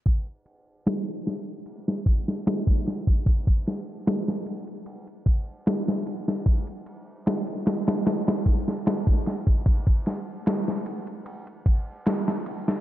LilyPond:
\new DrumStaff \with { instrumentName = "Drums" } \drummode { \time 4/4 \tempo 4 = 75 <bd cymr>16 cymr16 cymr8 <cymr sn>16 cymr16 <hho sn>8 cymr16 sn16 <bd cymr>16 sn16 <cymr sn>16 bd16 <cymr sn>16 bd16 | <bd cymr>16 bd16 <cymr sn>8 <cymr sn>16 sn16 cymr16 cymr16 cymr16 cymr16 <bd cymr>8 <cymr sn>16 sn16 cymr16 sn16 | <bd cymr>16 cymr16 cymr8 <cymr sn>16 cymr16 <cymr sn>16 <cymr sn>16 <cymr sn>16 <cymr sn>16 <bd cymr>16 sn16 <cymr sn>16 bd16 <cymr sn>16 bd16 | <bd cymr>16 bd16 <cymr sn>8 <cymr sn>16 sn16 cymr16 cymr16 cymr16 cymr16 <bd cymr>8 <cymr sn>16 sn16 cymr16 sn16 | }